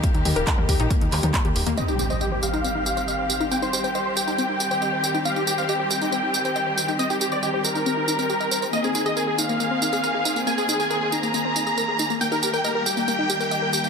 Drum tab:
HH |xxoxx-oxxxoxxxox|----------------|----------------|----------------|
TB |----------------|xxxxx-xxx-xxx-xx|xxxxx-xxx-xxx-xx|xxxxx-xxx-xxx-xx|
CP |----x-----x-x---|----------------|----------------|----------------|
T2 |--o--o-----o----|----------------|----------------|----------------|
BD |o---o-o-o---o---|----------------|----------------|----------------|

HH |----------------|----------------|----------------|----------------|
TB |xxxxx-xxx-xxxxxx|xxxxx-xxx-xxx-xx|xxxxx-xxx-xxx-xx|xxxxx-xxx-xxx-xx|
CP |----------------|----------------|----------------|----------------|
T2 |----------------|----------------|----------------|----------------|
BD |----------------|----------------|----------------|----------------|